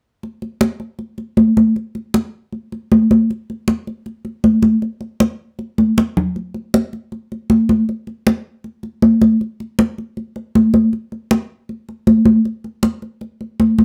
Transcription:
0.23 high conga soft
0.42 high conga soft
0.61 high conga medium
0.80 high conga soft
0.99 high conga soft
1.18 high conga soft
1.37 high conga medium
1.57 high conga medium
1.76 high conga soft
1.95 high conga soft
2.14 high conga medium
2.52 high conga soft
2.72 high conga soft
2.92 high conga medium
3.11 high conga medium
3.30 high conga soft
3.50 high conga soft
3.68 high conga medium
3.87 high conga soft
4.06 high conga soft
4.25 high conga soft
4.44 high conga medium
4.62 high conga medium
4.82 high conga soft
5.01 high conga soft
5.20 high conga medium
5.59 high conga soft
5.78 high conga medium
5.98 high conga medium
6.17 low conga medium
6.36 high conga soft
6.54 high conga soft
6.74 high conga medium
6.93 high conga soft
7.12 high conga soft
7.32 high conga soft
7.50 high conga medium
7.69 high conga medium
7.89 high conga soft
8.07 high conga soft
8.27 high conga medium
8.64 high conga soft
8.83 high conga soft
9.02 high conga medium
9.22 high conga medium
9.41 high conga soft
9.60 high conga soft
9.79 high conga medium
9.98 high conga soft
10.17 high conga soft
10.36 high conga soft
10.55 high conga medium
10.74 high conga medium
10.93 high conga soft
11.12 high conga soft
11.31 high conga medium
11.69 high conga soft
11.89 high conga soft
12.07 high conga medium
12.25 high conga medium
12.45 high conga soft
12.64 high conga soft
12.83 high conga medium
13.02 high conga soft
13.21 high conga soft
13.41 high conga soft
13.60 high conga medium
13.78 high conga medium

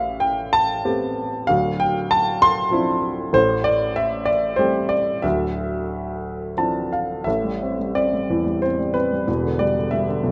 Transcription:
0.00 1.44 A1 medium
0.00 1.44 A2 medium
0.00 1.51 E5 medium
0.00 0.22 F5 medium
0.20 0.51 G5 medium
0.53 1.44 A5 loud
0.85 1.47 A3 medium
0.85 1.47 B3 soft
0.85 1.46 C4 soft
0.85 1.46 G4 medium
1.47 3.31 D1 medium
1.47 3.31 D2 medium
1.47 1.80 F5 medium
1.80 2.09 G5 medium
2.11 2.43 A5 loud
2.42 3.37 C6 loud
2.71 3.32 F3 medium
2.71 3.32 C4 medium
2.71 3.33 D4 soft
2.71 3.33 E4 medium
3.33 5.20 A1 medium
3.33 5.20 A2 medium
3.33 3.67 C5 loud
3.64 3.97 D5 loud
3.96 4.29 E5 loud
4.25 4.56 D5 medium
4.56 5.22 G3 medium
4.56 5.22 A3 medium
4.56 5.22 C4 medium
4.56 5.22 G4 medium
4.56 4.92 C5 medium
4.89 5.24 D5 medium
5.22 7.23 D1 medium
5.22 7.23 D2 medium
5.22 6.53 E5 medium
6.57 7.26 E3 soft
6.57 7.25 F3 soft
6.57 7.25 C4 soft
6.57 7.26 D4 soft
6.57 6.90 A5 medium
6.92 7.25 F5 medium
7.24 9.24 A1 medium
7.24 9.24 A2 medium
7.24 7.97 E5 medium
7.44 7.78 G3 soft
7.63 7.94 C4 soft
7.80 8.12 G3 soft
7.95 8.62 C4 medium
7.95 8.65 D5 medium
8.14 8.45 G3 soft
8.30 9.24 E2 medium
8.30 9.26 E3 medium
8.46 8.78 G3 medium
8.62 8.93 C4 soft
8.62 8.96 C5 medium
8.80 9.11 G3 soft
8.94 9.27 C4 soft
8.94 9.62 B4 medium
9.12 9.28 G3 soft
9.28 10.32 E1 medium
9.28 10.32 E2 medium
9.44 9.76 D3 medium
9.59 9.92 G3 medium
9.59 9.89 D5 medium
9.78 10.07 D3 medium
9.91 10.32 G3 medium
9.91 10.32 E5 medium
10.09 10.32 D3 medium
10.23 10.32 B1 medium
10.23 10.32 B2 medium

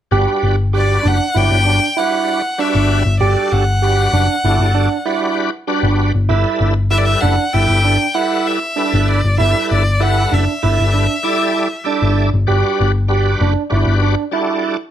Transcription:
0.11 0.25 G1 medium
0.11 0.56 G3 medium
0.11 0.56 D4 medium
0.11 0.56 F#4 medium
0.11 0.54 G4 medium
0.11 0.56 B4 medium
0.43 0.97 G1 medium
0.73 1.18 G3 medium
0.73 1.18 D4 medium
0.73 1.18 F#4 medium
0.73 0.95 G4 medium
0.73 1.18 B4 medium
0.73 1.09 D5 medium
1.03 1.18 F#1 medium
1.03 1.25 D4 medium
1.07 1.39 F#5 medium
1.35 1.49 G1 medium
1.35 1.80 F#3 medium
1.35 1.80 G3 medium
1.35 1.80 D4 medium
1.35 1.56 E4 medium
1.35 1.80 B4 medium
1.35 1.99 G5 loud
1.51 1.78 G1 medium
1.66 1.87 D4 medium
1.97 2.42 G3 medium
1.97 2.42 D4 medium
1.97 2.39 E4 medium
1.97 2.42 F#4 medium
1.97 2.42 B4 medium
1.97 2.61 F#5 medium
2.58 3.03 G3 medium
2.58 3.03 D4 medium
2.58 3.01 D4 medium
2.58 3.03 F#4 medium
2.58 3.03 B4 medium
2.58 3.19 E5 medium
2.75 3.02 G1 medium
3.06 3.19 G1 medium
3.20 3.35 G1 medium
3.20 3.65 G3 medium
3.20 3.65 D4 medium
3.20 3.65 F#4 medium
3.20 3.63 G4 medium
3.20 3.65 A4 medium
3.20 3.54 D5 medium
3.52 4.06 G1 medium
3.52 5.38 F#5 medium
3.82 4.27 G3 medium
3.82 4.27 D4 medium
3.82 4.27 F#4 medium
3.82 4.04 G4 medium
3.82 4.28 B4 medium
4.13 4.27 F#1 medium
4.13 4.35 D4 medium
4.44 4.58 G1 medium
4.44 4.89 G3 medium
4.44 4.89 D4 medium
4.44 4.66 E4 medium
4.44 4.89 F#4 medium
4.44 4.89 A4 medium
4.60 4.87 G1 medium
4.75 4.96 D4 medium
5.06 5.50 G3 medium
5.06 5.50 D4 medium
5.06 5.48 E4 medium
5.06 5.51 F#4 medium
5.06 5.51 B4 medium
5.67 6.12 G3 medium
5.67 6.10 D4 medium
5.67 6.12 D4 medium
5.67 6.12 F#4 medium
5.67 6.13 B4 medium
5.83 6.10 G1 medium
6.14 6.28 G1 medium
6.29 6.44 G1 medium
6.29 6.74 G3 medium
6.29 6.72 E4 medium
6.29 6.74 E4 medium
6.29 6.74 A4 medium
6.29 6.74 B4 medium
6.60 7.15 G1 medium
6.91 7.36 G3 medium
6.91 7.12 E4 medium
6.91 7.36 E4 medium
6.91 7.36 A4 medium
6.91 7.36 B4 medium
6.91 6.99 E5 medium
6.98 7.07 D5 medium
7.05 7.22 E5 medium
7.21 7.36 F#1 medium
7.21 7.44 D4 medium
7.21 7.54 F#5 medium
7.53 7.68 G1 medium
7.53 7.98 G3 medium
7.53 7.98 E4 medium
7.53 7.75 E4 medium
7.53 7.98 A4 medium
7.53 7.98 B4 medium
7.53 8.15 G5 loud
7.69 7.96 G1 medium
7.85 8.06 D4 medium
8.14 8.59 G3 medium
8.14 8.57 E4 medium
8.14 8.60 E4 medium
8.14 8.60 A4 medium
8.14 8.60 B4 medium
8.14 8.48 F#5 medium
8.47 9.09 E5 medium
8.76 9.21 G3 medium
8.76 9.19 D4 medium
8.76 9.21 E4 medium
8.76 9.21 A4 medium
8.76 9.22 B4 medium
8.94 9.20 G1 medium
9.08 9.39 D5 medium
9.24 9.37 G1 medium
9.38 9.53 G1 medium
9.38 9.84 G3 medium
9.38 9.81 E4 medium
9.38 9.84 E4 medium
9.38 9.84 A4 medium
9.38 9.84 B4 medium
9.38 9.68 E5 medium
9.71 10.25 G1 medium
9.71 10.04 D5 medium
10.00 10.45 G3 medium
10.00 10.45 E4 medium
10.00 10.22 E4 medium
10.00 10.45 A4 medium
10.00 10.45 B4 medium
10.00 10.35 F#5 medium
10.31 10.46 F#1 medium
10.31 10.53 D4 medium
10.31 12.18 E5 medium
10.62 10.77 G1 medium
10.62 11.07 G3 medium
10.62 11.07 E4 medium
10.62 10.84 E4 medium
10.62 11.07 A4 medium
10.62 11.07 B4 medium
10.80 11.06 G1 medium
10.94 11.15 D4 medium
11.23 11.68 G3 medium
11.23 11.68 E4 medium
11.23 11.67 E4 medium
11.23 11.68 A4 medium
11.23 11.69 D5 medium
11.84 12.29 G3 medium
11.84 12.29 D4 medium
11.84 12.30 E4 medium
11.84 12.30 A4 medium
11.84 12.30 D5 medium
12.02 12.29 G1 medium
12.34 12.47 G1 medium
12.47 12.62 G1 medium
12.47 12.92 G3 medium
12.47 12.92 D4 medium
12.47 12.92 F#4 medium
12.47 12.90 G4 medium
12.47 12.92 B4 medium
12.80 13.34 G1 medium
13.08 13.53 G3 medium
13.08 13.53 D4 medium
13.08 13.54 F#4 medium
13.08 13.31 G4 medium
13.08 13.54 B4 medium
13.41 13.54 F#1 medium
13.41 13.62 D4 medium
13.70 13.85 G1 medium
13.70 14.15 G3 medium
13.70 14.15 D4 medium
13.70 13.93 E4 medium
13.70 14.15 F#4 medium
13.70 14.15 B4 medium
13.87 14.14 G1 medium
14.02 14.24 D4 medium
14.31 14.77 G3 medium
14.31 14.77 D4 medium
14.31 14.76 E4 medium
14.31 14.77 F#4 medium
14.31 14.77 A4 medium

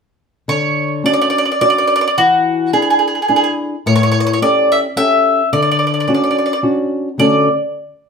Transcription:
0.48 1.03 D3 medium
0.48 1.01 C#5 medium
1.04 1.49 C#4 soft
1.04 1.50 D4 soft
1.04 1.50 F#4 soft
1.04 1.12 D5 medium
1.13 1.20 D5 medium
1.22 1.29 D5 medium
1.30 1.37 D5 medium
1.38 1.44 D5 medium
1.45 1.50 D5 soft
1.52 1.59 D5 medium
1.61 2.06 C#4 soft
1.61 2.06 D4 soft
1.61 2.06 F#4 soft
1.61 1.69 D5 medium
1.70 1.77 D5 medium
1.78 1.86 D5 medium
1.87 1.94 D5 medium
1.96 2.00 D5 medium
2.01 2.06 D5 medium
2.08 2.15 D5 medium
2.18 2.72 E3 medium
2.18 2.70 F#4 medium
2.73 3.18 D4 soft
2.73 3.18 E4 soft
2.73 2.81 G#4 medium
2.73 3.19 G#4 soft
2.82 2.89 G#4 soft
2.90 2.98 G#4 soft
2.99 3.06 G#4 soft
3.08 3.13 G#4 soft
3.15 3.21 G#4 soft
3.22 3.27 G#4 soft
3.28 3.74 D4 soft
3.28 3.74 E4 soft
3.28 3.35 G#4 soft
3.28 3.75 G#4 soft
3.36 3.43 G#4 medium
3.44 3.51 G#4 soft
3.86 4.40 A2 medium
3.86 3.94 C#5 medium
3.95 4.02 C#5 medium
4.03 4.10 C#5 medium
4.12 4.19 C#5 medium
4.20 4.25 C#5 medium
4.27 4.32 C#5 medium
4.33 4.39 C#5 medium
4.42 4.86 C#4 soft
4.42 4.86 G4 soft
4.42 4.86 A4 soft
4.42 4.70 D5 medium
4.72 4.79 E5 medium
4.96 5.41 C#4 soft
4.96 5.41 G4 soft
4.96 5.41 A4 soft
4.96 5.48 E5 loud
5.53 6.06 D3 medium
5.53 5.60 D5 medium
5.62 5.69 D5 soft
5.71 5.78 D5 medium
5.79 5.85 D5 soft
5.87 5.92 D5 soft
5.94 5.99 D5 soft
6.00 6.06 D5 soft
6.08 6.53 C#4 soft
6.08 6.53 D4 soft
6.08 6.53 F#4 soft
6.08 6.13 D5 soft
6.14 6.21 D5 soft
6.24 6.29 D5 soft
6.31 6.37 D5 soft
6.38 6.44 D5 soft
6.46 6.51 D5 soft
6.53 6.58 D5 medium
6.63 7.08 C#4 soft
6.63 7.08 D4 soft
6.63 7.08 F#4 soft
7.18 7.47 D3 soft
7.18 7.47 A3 soft
7.18 7.48 C#4 soft
7.18 7.48 F#4 soft
7.18 7.48 A4 soft
7.18 7.48 D5 medium

